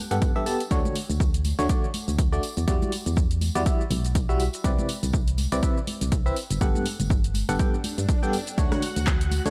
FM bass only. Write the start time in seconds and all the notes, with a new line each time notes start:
0.11 G2
0.71 D2
1.10 D2
1.59 D2
2.08 D2
2.57 E2
2.68 E2
3.06 E2
3.56 E2
3.91 B1
4.64 C2
5.03 C2
5.52 C2
6.01 C2
6.51 G1
6.61 G1
7.00 G1
7.49 G1
7.98 G2
8.58 D2
8.96 D2
9.46 D2